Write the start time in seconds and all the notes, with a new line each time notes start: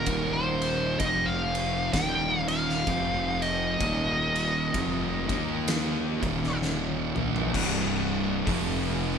Already playing: D#3 A#3 F4 A#4
0.06 D#1 D#2 A#2 D#3, kick, ride
0.33 C5
0.62 ride
1.00 F1 F2 C3 F3 C4 G4 D#5, kick, ride
1.26 F5
1.55 ride
1.93 D#1 D#2 A#2 D#3 A#3 F4 G5, kick, snare, ride
2.48 F5, ride
2.69 snare
2.87 F1 F2 C3 F3 C4 G4, kick, ride
3.42 D#5, ride
3.80 D#1 D#2 A#2 D#3 A#3 F4, kick, ride
4.36 ride
4.74 F1 F2 C3 F3, kick, ride
5.29 D#2 D#3 A#3 D#4, kick, ride
5.68 G#3, snare, ride
6.22 D#1 D#2 A#2 D#3, kick, ride
6.44 snare
6.62 snare
7.15 A#1 A#2 F3 A#3, mid tom
7.36 floor tom
7.54 C1 C2 G2 C3, kick, crash
8.47 F1 F2 C3 F3, kick, open hi-hat